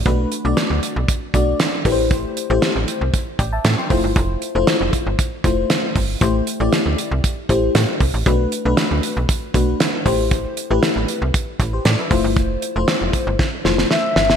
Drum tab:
HH |x-x-x-x-x-x-x-o-|x-x-x-x-x-x-x-o-|x-x-x-x-x-x-x-o-|x-x-x-x-x-x-x-o-|
SD |----o-------o---|----o-------o---|----o-------o---|----o-------o---|
BD |o-------o-o---o-|o-------o-o---o-|o-----o-o-o---o-|o-------o-o---o-|

HH |x-x-x-x-x-x-x-o-|x-x-x-x-x-x-x-o-|x-x-x-x---------|
SD |----o-------o---|----o-------o---|----o---o-ooo-oo|
BD |o-------o-o---o-|o-------o-o---o-|o-----o-o-------|